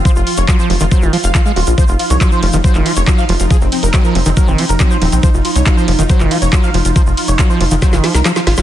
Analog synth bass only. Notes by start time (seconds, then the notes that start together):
0.16 F1
0.38 F1
0.70 F1
0.81 F1
1.02 F1
1.24 F1
1.56 D#1
1.67 A#1
1.89 F1
2.10 C2
2.43 F1
2.53 F1
2.75 F1
2.97 F1
3.29 F1
3.40 F1
3.61 F1
3.83 F1
4.15 F1
4.26 F1
4.48 F1
4.69 F1
5.02 D#1
5.12 A#1
5.34 F1
5.56 C2
5.88 F1
5.99 F1
6.20 F1
6.42 F1
6.74 F1
6.85 F1
7.07 F1
7.28 F1
7.61 F1
7.71 F1
7.93 F1
8.15 C2
8.47 G#1
8.58 G#1